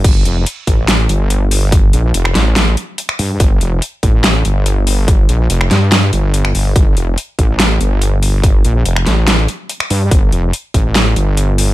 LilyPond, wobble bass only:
\new Staff \with { instrumentName = "Wobble bass" } { \clef bass \time 4/4 \key g \minor \tempo 4 = 143 g,,8 f,,8 r8 a,,4 g,,4.~ | g,,8 bes,,8 f,,8 a,,4 r4 g,8 | g,,8 f,,8 r8 a,,4 g,,4.~ | g,,8 bes,,8 f,,8 g,4 g,,4 g,,8 |
g,,8 f,,8 r8 a,,4 g,,4.~ | g,,8 bes,,8 f,,8 a,,4 r4 g,8 | g,,8 f,,8 r8 a,,4 g,,4. | }